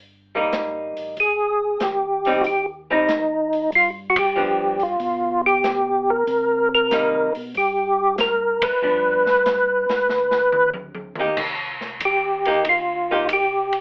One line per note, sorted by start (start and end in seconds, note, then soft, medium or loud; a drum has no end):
0.00 0.94 G1 medium
0.35 1.14 G3 medium
0.35 1.15 A#3 medium
0.35 1.15 D#4 medium
0.52 snare medium
0.52 closed hi-hat medium
0.97 1.16 A1 medium
0.97 open hi-hat soft
1.17 1.77 G#1 medium
1.17 1.85 G#4 medium
1.17 kick soft
1.17 open hi-hat soft
1.80 2.41 D#2 medium
1.80 2.43 G4 medium
1.80 snare medium
1.80 closed hi-hat medium
2.25 2.44 G3 medium
2.25 2.44 C4 medium
2.25 2.44 D#4 medium
2.25 open hi-hat soft
2.41 3.68 D#2 medium
2.41 2.45 F#4 medium
2.41 kick soft
2.41 open hi-hat soft
2.47 2.66 G4 medium
2.90 3.08 G3 medium
2.90 3.08 C4 medium
2.90 3.08 D#4 medium
2.90 3.70 D#4 medium
3.09 snare medium
3.09 closed hi-hat soft
3.53 open hi-hat soft
3.72 4.96 G2 medium
3.72 3.90 F4 medium
3.72 kick soft
3.72 open hi-hat soft
4.10 4.18 F#4 medium
4.16 4.83 G4 medium
4.16 kick medium
4.16 ride medium
4.36 4.76 F3 medium
4.36 4.76 B3 medium
4.36 4.77 D4 medium
4.80 5.41 F4 medium
4.80 open hi-hat soft
5.00 6.24 B2 medium
5.00 kick soft
5.00 open hi-hat soft
5.46 6.11 G4 medium
5.64 snare medium
5.64 closed hi-hat medium
6.10 6.69 A#4 loud
6.27 7.31 C3 medium
6.27 kick soft
6.27 open hi-hat soft
6.75 7.33 A#4 medium
6.91 7.31 G3 medium
6.91 7.32 A#3 medium
6.91 7.32 D#4 medium
6.91 snare medium
6.91 closed hi-hat soft
7.35 7.54 B2 medium
7.35 open hi-hat soft
7.55 8.59 G2 medium
7.55 8.16 G4 medium
7.55 kick soft
7.55 open hi-hat soft
8.18 8.65 A#4 medium
8.18 snare medium
8.18 closed hi-hat medium
8.62 8.73 G2 soft
8.62 10.70 B4 medium
8.62 kick medium
8.62 ride medium
8.82 9.86 G2 medium
8.82 9.22 F3 soft
8.82 9.23 B3 soft
8.82 9.23 D4 medium
9.26 snare soft
9.46 snare medium
9.46 closed hi-hat medium
9.89 10.09 G#2 medium
9.89 snare medium
9.89 open hi-hat soft
10.09 11.14 D2 medium
10.09 snare soft
10.31 snare medium
10.52 mid tom medium
10.74 high tom medium
10.95 high tom medium
11.15 11.28 D2 soft
11.15 11.37 A#3 medium
11.15 mid tom medium
11.20 11.37 D#4 medium
11.20 11.37 G4 medium
11.37 12.00 C2 medium
11.37 kick medium
11.37 crash medium
11.81 snare soft
12.00 12.64 D#2 medium
12.00 kick soft
12.00 hi-hat pedal soft
12.00 ride medium
12.05 12.64 G4 medium
12.45 12.64 A#3 medium
12.45 12.65 D#4 medium
12.45 12.65 G4 medium
12.45 ride soft
12.65 13.28 D2 medium
12.65 kick soft
12.65 ride medium
12.69 13.27 F4 medium
13.11 13.28 A#3 medium
13.11 13.29 D#4 medium
13.11 13.29 G4 medium
13.29 13.81 C2 medium
13.29 kick soft
13.29 hi-hat pedal medium
13.29 ride medium
13.33 13.81 G4 medium
13.73 ride soft